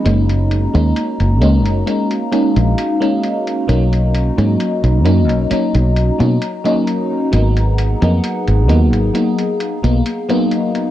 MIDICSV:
0, 0, Header, 1, 6, 480
1, 0, Start_track
1, 0, Tempo, 909091
1, 29, Time_signature, 4, 2, 24, 8
1, 5759, End_track
2, 0, Start_track
2, 0, Title_t, "Ambient pad"
2, 0, Program_c, 0, 92
2, 0, Note_on_c, 0, 61, 81
2, 0, Note_on_c, 0, 75, 75
2, 30, Note_on_c, 0, 66, 72
2, 32, Note_on_c, 0, 82, 86
2, 967, Note_off_c, 0, 75, 0
2, 991, Note_on_c, 0, 77, 67
2, 1927, Note_off_c, 0, 61, 0
2, 1931, Note_off_c, 0, 82, 0
2, 1940, Note_off_c, 0, 77, 0
2, 1949, Note_on_c, 0, 82, 92
2, 1950, Note_on_c, 0, 75, 71
2, 3849, Note_off_c, 0, 66, 0
2, 3850, Note_off_c, 0, 75, 0
2, 3871, Note_on_c, 0, 68, 74
2, 3871, Note_on_c, 0, 78, 73
2, 4820, Note_off_c, 0, 78, 0
2, 4830, Note_on_c, 0, 77, 70
2, 5759, Note_off_c, 0, 68, 0
2, 5759, Note_off_c, 0, 77, 0
2, 5759, Note_off_c, 0, 82, 0
2, 5759, End_track
3, 0, Start_track
3, 0, Title_t, "FM electric piano"
3, 0, Program_c, 1, 5
3, 25, Note_on_c, 1, 56, 77
3, 27, Note_on_c, 1, 58, 72
3, 30, Note_on_c, 1, 61, 68
3, 32, Note_on_c, 1, 63, 85
3, 362, Note_off_c, 1, 56, 0
3, 363, Note_off_c, 1, 58, 0
3, 365, Note_off_c, 1, 61, 0
3, 366, Note_off_c, 1, 63, 0
3, 388, Note_on_c, 1, 56, 70
3, 391, Note_on_c, 1, 58, 67
3, 394, Note_on_c, 1, 61, 66
3, 397, Note_on_c, 1, 63, 78
3, 718, Note_off_c, 1, 56, 0
3, 720, Note_off_c, 1, 58, 0
3, 721, Note_off_c, 1, 61, 0
3, 723, Note_off_c, 1, 63, 0
3, 744, Note_on_c, 1, 56, 85
3, 747, Note_on_c, 1, 58, 77
3, 748, Note_on_c, 1, 61, 78
3, 752, Note_on_c, 1, 63, 90
3, 959, Note_off_c, 1, 56, 0
3, 960, Note_off_c, 1, 58, 0
3, 961, Note_off_c, 1, 61, 0
3, 963, Note_off_c, 1, 63, 0
3, 983, Note_on_c, 1, 56, 69
3, 986, Note_on_c, 1, 58, 63
3, 988, Note_on_c, 1, 61, 65
3, 991, Note_on_c, 1, 63, 74
3, 1203, Note_off_c, 1, 56, 0
3, 1204, Note_off_c, 1, 58, 0
3, 1206, Note_off_c, 1, 61, 0
3, 1207, Note_off_c, 1, 63, 0
3, 1224, Note_on_c, 1, 56, 82
3, 1226, Note_on_c, 1, 58, 74
3, 1229, Note_on_c, 1, 61, 78
3, 1231, Note_on_c, 1, 63, 92
3, 1562, Note_off_c, 1, 56, 0
3, 1563, Note_off_c, 1, 58, 0
3, 1564, Note_off_c, 1, 61, 0
3, 1566, Note_off_c, 1, 63, 0
3, 1587, Note_on_c, 1, 56, 79
3, 1589, Note_on_c, 1, 58, 71
3, 1592, Note_on_c, 1, 61, 72
3, 1595, Note_on_c, 1, 63, 90
3, 1918, Note_off_c, 1, 56, 0
3, 1919, Note_off_c, 1, 58, 0
3, 1920, Note_off_c, 1, 61, 0
3, 1922, Note_off_c, 1, 63, 0
3, 1942, Note_on_c, 1, 54, 77
3, 1944, Note_on_c, 1, 58, 71
3, 1947, Note_on_c, 1, 61, 68
3, 1950, Note_on_c, 1, 63, 84
3, 2281, Note_off_c, 1, 54, 0
3, 2282, Note_off_c, 1, 58, 0
3, 2283, Note_off_c, 1, 61, 0
3, 2285, Note_off_c, 1, 63, 0
3, 2309, Note_on_c, 1, 54, 72
3, 2311, Note_on_c, 1, 58, 66
3, 2314, Note_on_c, 1, 61, 68
3, 2316, Note_on_c, 1, 63, 78
3, 2639, Note_off_c, 1, 54, 0
3, 2640, Note_off_c, 1, 58, 0
3, 2642, Note_off_c, 1, 61, 0
3, 2643, Note_off_c, 1, 63, 0
3, 2662, Note_on_c, 1, 54, 84
3, 2665, Note_on_c, 1, 58, 77
3, 2667, Note_on_c, 1, 61, 80
3, 2670, Note_on_c, 1, 63, 92
3, 2878, Note_off_c, 1, 54, 0
3, 2879, Note_off_c, 1, 58, 0
3, 2881, Note_off_c, 1, 61, 0
3, 2882, Note_off_c, 1, 63, 0
3, 2902, Note_on_c, 1, 54, 68
3, 2905, Note_on_c, 1, 58, 67
3, 2907, Note_on_c, 1, 61, 64
3, 2911, Note_on_c, 1, 63, 76
3, 3241, Note_off_c, 1, 54, 0
3, 3243, Note_off_c, 1, 58, 0
3, 3244, Note_off_c, 1, 61, 0
3, 3245, Note_off_c, 1, 63, 0
3, 3267, Note_on_c, 1, 54, 76
3, 3270, Note_on_c, 1, 58, 70
3, 3272, Note_on_c, 1, 61, 73
3, 3275, Note_on_c, 1, 63, 86
3, 3336, Note_off_c, 1, 54, 0
3, 3338, Note_off_c, 1, 58, 0
3, 3339, Note_off_c, 1, 61, 0
3, 3340, Note_off_c, 1, 63, 0
3, 3508, Note_on_c, 1, 54, 90
3, 3512, Note_on_c, 1, 58, 85
3, 3514, Note_on_c, 1, 61, 81
3, 3516, Note_on_c, 1, 63, 104
3, 3838, Note_off_c, 1, 54, 0
3, 3840, Note_off_c, 1, 58, 0
3, 3841, Note_off_c, 1, 61, 0
3, 3842, Note_off_c, 1, 63, 0
3, 3864, Note_on_c, 1, 54, 76
3, 3866, Note_on_c, 1, 58, 69
3, 3869, Note_on_c, 1, 59, 72
3, 3872, Note_on_c, 1, 63, 84
3, 4202, Note_off_c, 1, 54, 0
3, 4203, Note_off_c, 1, 58, 0
3, 4205, Note_off_c, 1, 59, 0
3, 4206, Note_off_c, 1, 63, 0
3, 4231, Note_on_c, 1, 54, 70
3, 4233, Note_on_c, 1, 58, 67
3, 4236, Note_on_c, 1, 59, 66
3, 4238, Note_on_c, 1, 63, 76
3, 4560, Note_off_c, 1, 54, 0
3, 4561, Note_off_c, 1, 58, 0
3, 4562, Note_off_c, 1, 59, 0
3, 4564, Note_off_c, 1, 63, 0
3, 4584, Note_on_c, 1, 54, 87
3, 4587, Note_on_c, 1, 58, 78
3, 4590, Note_on_c, 1, 59, 80
3, 4592, Note_on_c, 1, 63, 90
3, 4799, Note_off_c, 1, 54, 0
3, 4801, Note_off_c, 1, 58, 0
3, 4802, Note_off_c, 1, 59, 0
3, 4803, Note_off_c, 1, 63, 0
3, 4825, Note_on_c, 1, 54, 72
3, 4828, Note_on_c, 1, 58, 65
3, 4830, Note_on_c, 1, 59, 61
3, 4833, Note_on_c, 1, 63, 78
3, 5162, Note_off_c, 1, 54, 0
3, 5164, Note_off_c, 1, 58, 0
3, 5165, Note_off_c, 1, 59, 0
3, 5166, Note_off_c, 1, 63, 0
3, 5192, Note_on_c, 1, 54, 81
3, 5195, Note_on_c, 1, 58, 73
3, 5197, Note_on_c, 1, 59, 75
3, 5199, Note_on_c, 1, 63, 84
3, 5259, Note_off_c, 1, 54, 0
3, 5260, Note_off_c, 1, 58, 0
3, 5261, Note_off_c, 1, 59, 0
3, 5262, Note_off_c, 1, 63, 0
3, 5432, Note_on_c, 1, 54, 92
3, 5434, Note_on_c, 1, 58, 86
3, 5437, Note_on_c, 1, 59, 87
3, 5441, Note_on_c, 1, 63, 103
3, 5759, Note_off_c, 1, 54, 0
3, 5759, Note_off_c, 1, 58, 0
3, 5759, Note_off_c, 1, 59, 0
3, 5759, Note_off_c, 1, 63, 0
3, 5759, End_track
4, 0, Start_track
4, 0, Title_t, "Fingered electric bass"
4, 0, Program_c, 2, 33
4, 29, Note_on_c, 2, 30, 92
4, 350, Note_off_c, 2, 30, 0
4, 394, Note_on_c, 2, 39, 97
4, 483, Note_off_c, 2, 39, 0
4, 634, Note_on_c, 2, 30, 88
4, 748, Note_off_c, 2, 30, 0
4, 748, Note_on_c, 2, 37, 80
4, 873, Note_off_c, 2, 37, 0
4, 873, Note_on_c, 2, 30, 86
4, 963, Note_off_c, 2, 30, 0
4, 1355, Note_on_c, 2, 34, 88
4, 1444, Note_off_c, 2, 34, 0
4, 1948, Note_on_c, 2, 35, 89
4, 2269, Note_off_c, 2, 35, 0
4, 2313, Note_on_c, 2, 44, 98
4, 2403, Note_off_c, 2, 44, 0
4, 2553, Note_on_c, 2, 35, 89
4, 2668, Note_off_c, 2, 35, 0
4, 2668, Note_on_c, 2, 42, 81
4, 2794, Note_off_c, 2, 42, 0
4, 2794, Note_on_c, 2, 35, 90
4, 2883, Note_off_c, 2, 35, 0
4, 3035, Note_on_c, 2, 35, 95
4, 3219, Note_off_c, 2, 35, 0
4, 3274, Note_on_c, 2, 47, 96
4, 3364, Note_off_c, 2, 47, 0
4, 3870, Note_on_c, 2, 32, 89
4, 4191, Note_off_c, 2, 32, 0
4, 4236, Note_on_c, 2, 41, 99
4, 4324, Note_off_c, 2, 41, 0
4, 4477, Note_on_c, 2, 32, 93
4, 4590, Note_off_c, 2, 32, 0
4, 4590, Note_on_c, 2, 39, 84
4, 4715, Note_off_c, 2, 39, 0
4, 4715, Note_on_c, 2, 32, 88
4, 4804, Note_off_c, 2, 32, 0
4, 5195, Note_on_c, 2, 35, 90
4, 5284, Note_off_c, 2, 35, 0
4, 5759, End_track
5, 0, Start_track
5, 0, Title_t, "Muted fingered electric bass strokes"
5, 2910, Note_on_c, 9, 29, 39
5, 2963, Note_off_c, 9, 29, 0
5, 5759, End_track
6, 0, Start_track
6, 0, Title_t, "Drums"
6, 29, Note_on_c, 9, 42, 85
6, 82, Note_off_c, 9, 42, 0
6, 155, Note_on_c, 9, 42, 38
6, 208, Note_off_c, 9, 42, 0
6, 270, Note_on_c, 9, 42, 61
6, 323, Note_off_c, 9, 42, 0
6, 395, Note_on_c, 9, 42, 37
6, 448, Note_off_c, 9, 42, 0
6, 508, Note_on_c, 9, 42, 90
6, 561, Note_off_c, 9, 42, 0
6, 634, Note_on_c, 9, 42, 37
6, 686, Note_off_c, 9, 42, 0
6, 748, Note_on_c, 9, 42, 62
6, 801, Note_off_c, 9, 42, 0
6, 874, Note_on_c, 9, 42, 37
6, 927, Note_off_c, 9, 42, 0
6, 989, Note_on_c, 9, 42, 83
6, 1041, Note_off_c, 9, 42, 0
6, 1113, Note_on_c, 9, 42, 37
6, 1166, Note_off_c, 9, 42, 0
6, 1228, Note_on_c, 9, 42, 64
6, 1281, Note_off_c, 9, 42, 0
6, 1355, Note_on_c, 9, 42, 37
6, 1407, Note_off_c, 9, 42, 0
6, 1469, Note_on_c, 9, 42, 84
6, 1522, Note_off_c, 9, 42, 0
6, 1594, Note_on_c, 9, 42, 38
6, 1646, Note_off_c, 9, 42, 0
6, 1708, Note_on_c, 9, 42, 38
6, 1761, Note_off_c, 9, 42, 0
6, 1833, Note_on_c, 9, 42, 35
6, 1886, Note_off_c, 9, 42, 0
6, 1949, Note_on_c, 9, 42, 80
6, 2001, Note_off_c, 9, 42, 0
6, 2074, Note_on_c, 9, 42, 37
6, 2126, Note_off_c, 9, 42, 0
6, 2188, Note_on_c, 9, 42, 57
6, 2241, Note_off_c, 9, 42, 0
6, 2314, Note_on_c, 9, 42, 36
6, 2367, Note_off_c, 9, 42, 0
6, 2428, Note_on_c, 9, 42, 87
6, 2481, Note_off_c, 9, 42, 0
6, 2554, Note_on_c, 9, 42, 36
6, 2607, Note_off_c, 9, 42, 0
6, 2669, Note_on_c, 9, 42, 56
6, 2722, Note_off_c, 9, 42, 0
6, 2795, Note_on_c, 9, 42, 37
6, 2848, Note_off_c, 9, 42, 0
6, 2908, Note_on_c, 9, 42, 84
6, 2961, Note_off_c, 9, 42, 0
6, 3034, Note_on_c, 9, 42, 38
6, 3087, Note_off_c, 9, 42, 0
6, 3149, Note_on_c, 9, 42, 62
6, 3201, Note_off_c, 9, 42, 0
6, 3275, Note_on_c, 9, 42, 35
6, 3327, Note_off_c, 9, 42, 0
6, 3388, Note_on_c, 9, 42, 83
6, 3441, Note_off_c, 9, 42, 0
6, 3514, Note_on_c, 9, 42, 37
6, 3567, Note_off_c, 9, 42, 0
6, 3629, Note_on_c, 9, 42, 37
6, 3682, Note_off_c, 9, 42, 0
6, 3869, Note_on_c, 9, 42, 87
6, 3921, Note_off_c, 9, 42, 0
6, 3995, Note_on_c, 9, 42, 37
6, 4048, Note_off_c, 9, 42, 0
6, 4110, Note_on_c, 9, 42, 59
6, 4162, Note_off_c, 9, 42, 0
6, 4235, Note_on_c, 9, 42, 35
6, 4288, Note_off_c, 9, 42, 0
6, 4349, Note_on_c, 9, 42, 87
6, 4402, Note_off_c, 9, 42, 0
6, 4475, Note_on_c, 9, 42, 39
6, 4528, Note_off_c, 9, 42, 0
6, 4590, Note_on_c, 9, 42, 57
6, 4643, Note_off_c, 9, 42, 0
6, 4715, Note_on_c, 9, 42, 36
6, 4768, Note_off_c, 9, 42, 0
6, 4830, Note_on_c, 9, 42, 81
6, 4883, Note_off_c, 9, 42, 0
6, 4956, Note_on_c, 9, 42, 37
6, 5008, Note_off_c, 9, 42, 0
6, 5071, Note_on_c, 9, 42, 63
6, 5123, Note_off_c, 9, 42, 0
6, 5196, Note_on_c, 9, 42, 35
6, 5249, Note_off_c, 9, 42, 0
6, 5311, Note_on_c, 9, 42, 87
6, 5364, Note_off_c, 9, 42, 0
6, 5436, Note_on_c, 9, 42, 38
6, 5489, Note_off_c, 9, 42, 0
6, 5551, Note_on_c, 9, 42, 37
6, 5604, Note_off_c, 9, 42, 0
6, 5676, Note_on_c, 9, 42, 34
6, 5729, Note_off_c, 9, 42, 0
6, 5759, End_track
0, 0, End_of_file